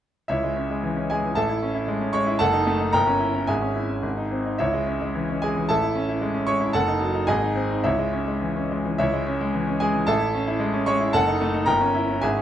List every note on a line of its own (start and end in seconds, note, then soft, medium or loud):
0.28 1.33 C#2 soft
0.28 1.06 E4 soft
0.28 1.06 C#5 soft
0.28 1.09 E5 medium
0.43 0.65 G#3 soft
0.56 0.78 C#4 soft
0.70 0.91 G#3 soft
0.83 1.05 E3 soft
0.97 1.18 C#4 soft
1.10 1.32 G#3 soft
1.10 1.35 G#4 soft
1.10 1.36 G#5 medium
1.23 1.36 E3 soft
1.35 2.37 A1 medium
1.35 2.10 A4 medium
1.35 2.10 E5 medium
1.35 2.14 A5 medium
1.49 1.70 E4 soft
1.63 1.83 C#4 soft
1.75 1.96 E4 soft
1.88 2.09 G#3 medium
2.01 2.22 C#4 soft
2.13 2.35 G#3 medium
2.13 2.39 C#5 medium
2.13 2.40 C#6 medium
2.27 2.40 E4 medium
2.39 2.92 F#1 medium
2.39 2.90 A4 medium
2.39 2.90 F#5 medium
2.39 2.93 A5 medium
2.53 2.75 D#4 medium
2.67 2.88 A3 medium
2.80 2.94 D#4 medium
2.93 3.47 G1 medium
2.93 3.45 A#4 medium
2.93 3.44 G5 medium
2.93 3.48 A#5 medium
3.07 3.29 C#4 medium
3.20 3.42 E4 soft
3.34 3.48 C#4 soft
3.47 4.01 G#1 medium
3.47 4.28 G#4 soft
3.47 4.28 E5 soft
3.47 4.32 G#5 medium
3.61 3.84 C#4 soft
3.76 3.98 E4 soft
3.90 4.04 C#4 soft
4.03 4.58 G#1 medium
4.17 4.40 D#4 soft
4.31 4.54 C4 soft
4.45 4.60 D#4 soft
4.58 5.66 C#2 medium
4.58 5.39 E4 soft
4.58 5.39 C#5 medium
4.58 5.42 E5 medium
4.73 4.96 G#3 soft
4.87 5.10 C#4 soft
5.01 5.24 G#3 soft
5.15 5.37 E3 soft
5.29 5.51 C#4 soft
5.42 5.64 G#3 soft
5.42 5.68 G#4 medium
5.42 5.69 G#5 medium
5.56 5.70 E3 soft
5.69 6.71 A1 medium
5.69 6.44 A4 medium
5.69 6.44 E5 medium
5.69 6.47 A5 medium
5.83 6.04 E4 soft
5.95 6.17 C#4 soft
6.09 6.30 E4 soft
6.21 6.42 G#3 medium
6.34 6.55 C#4 soft
6.47 6.69 G#3 medium
6.47 6.72 C#5 medium
6.47 6.73 C#6 medium
6.60 6.74 E4 medium
6.73 7.26 F#1 medium
6.73 7.24 A4 medium
6.73 7.24 F#5 medium
6.73 7.27 A5 medium
6.87 7.09 D#4 medium
7.01 7.22 F#3 medium
7.14 7.28 D#4 medium
7.27 7.83 G#1 medium
7.27 7.80 G#4 medium
7.27 7.80 D#5 medium
7.27 7.84 G#5 medium
7.42 7.64 D#4 medium
7.55 7.78 C4 medium
7.70 7.84 D#4 medium
7.84 8.96 C#2 medium
7.84 8.38 E4 soft
7.84 8.38 C#5 soft
7.84 8.41 E5 medium
7.99 8.22 G#3 soft
8.13 8.36 C#4 soft
8.27 8.50 G#3 soft
8.41 8.64 E3 soft
8.56 8.79 C#4 soft
8.71 8.94 G#3 soft
8.85 8.99 E3 soft
8.98 10.04 C#2 medium
8.98 9.77 E4 medium
8.98 9.77 C#5 medium
8.98 9.80 E5 medium
9.13 9.35 G#3 medium
9.27 9.48 C#4 soft
9.41 9.62 G#3 soft
9.54 9.75 E3 medium
9.67 9.89 C#4 medium
9.80 10.02 G#3 medium
9.80 10.06 G#4 medium
9.80 10.07 G#5 medium
9.94 10.08 E3 soft
10.07 11.10 A1 medium
10.07 10.83 A4 medium
10.07 10.83 E5 medium
10.07 10.86 A5 medium
10.21 10.42 E4 medium
10.35 10.55 C#4 medium
10.47 10.68 E4 medium
10.60 10.81 G#3 medium
10.74 10.95 C#4 medium
10.86 11.08 G#3 medium
10.86 11.12 C#5 medium
10.86 11.13 C#6 medium
11.00 11.13 E4 medium
11.13 11.65 F#1 medium
11.13 11.63 A4 medium
11.13 11.63 F#5 medium
11.13 11.67 A5 medium
11.27 11.48 D#4 medium
11.41 11.62 A3 medium
11.54 11.67 D#4 medium
11.66 12.21 G1 medium
11.66 12.19 A#4 medium
11.66 12.19 G5 medium
11.66 12.22 A#5 medium
11.81 12.03 C#4 medium
11.94 12.17 E4 medium
12.08 12.23 C#4 medium
12.21 12.42 G#1 medium
12.21 12.42 G#4 medium
12.21 12.42 E5 medium
12.21 12.42 G#5 medium
12.37 12.42 C#4 soft